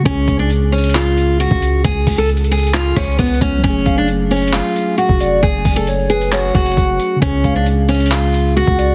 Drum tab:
HH |x-----------x-----------x-----------x--x--x--x--x-----------x-----------x-----------x-----------|x-----------o-----------x---x---x---x--xx-x-xx--------------x---x---x---x---x---x---x-----------|x-----------x-----------x-----------x--x--x--x--x-----------x-----------x-----------x-----------|x-----------o-----------x-----------x-----x-----x-----------x--x--x--x--x-----------x-----------|
CP |------------------------------------------------x-----------------------------------------------|------------------------------------------------x-----------------------------------------------|------------------------------------------------x-----------------------------------------------|------------------------------------------------x-----------------------------------------------|
SD |------------------------------------------------------------------------------------------------|------------------------------------------------------------r-----------------------------------|------------------------------------------------------------------------------------------------|------------------------------------------------------------------------------------------------|
BD |o-----------o-----------------------------------------------------------------o-----------------|o-----------o-----------------------------------------------o-----------o-----------o-----------|o-----------o-----------------------------------------------------------------o-----------------|o-----------o-----------------------------------------------o-----------o-----------------------|

HH |x-----------x-----------x-----------x--x--x--x--x-----------x-----------x-----------x-----------|
CP |------------------------------------------------x-----------------------------------------------|
SD |------------------------------------------------------------------------------------------------|
BD |o-----------o-----------------------------------------------------------------o-----------------|